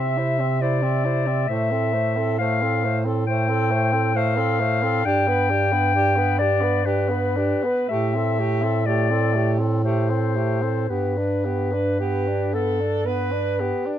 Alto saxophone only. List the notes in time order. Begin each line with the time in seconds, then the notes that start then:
Already playing: E5
0.18 C5
0.41 E5
0.62 C5
0.84 E5
1.05 C5
1.27 E5
1.50 C5
1.71 A4
1.94 C5
2.17 A4
2.40 C5
2.63 A4
2.85 C5
3.06 A4
3.28 C5
3.49 A4
3.71 C5
3.94 A4
4.16 C5
4.37 A4
4.60 C5
4.83 A4
5.07 G4
5.28 B4
5.50 G4
5.72 B4
5.96 G4
6.19 B4
6.41 G4
6.64 B4
6.86 G4
7.11 B4
7.38 G4
7.66 B4
7.91 G4
8.16 A4
8.40 G4
8.64 A4
8.88 G4
9.11 A4
9.36 G4
9.60 A4
9.84 G4
10.10 A4
10.37 G4
10.63 A4
10.90 G4
11.17 B4
11.45 G4
11.72 B4
12.00 G4
12.54 A4
13.06 B4
13.60 G4